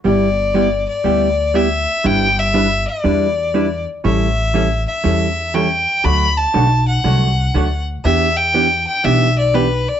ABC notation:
X:1
M:4/4
L:1/8
Q:"Swing" 1/4=120
K:G
V:1 name="Fiddle"
d3 d3 e2 | g e2 d4 z | e3 e3 g2 | b a2 f4 z |
e g2 g e d B d |]
V:2 name="Hollow-body jazz guitar"
[G,B,EG] z [G,B,EG] z [G,B,EG] z [G,B,EG] z | [G,DEB] z [G,DEB] z [G,DEB] z [G,DEB] z | [E,G,^CEA] z [E,G,CEA] z [E,G,CEA] z [E,G,CEA] z | [D,F,A,DF] z [D,F,A,DF] z [D,F,A,DF] z [D,F,A,DF] z |
[E,B,DG] z [E,B,DG] z [E,B,DG] z [E,B,DG] z |]
V:3 name="Upright bass" clef=bass
G,,,4 D,,4 | G,,,4 E,,4 | A,,,4 E,,4 | D,,2 B,,,2 C,,2 D,,2 |
E,,4 B,,,4 |]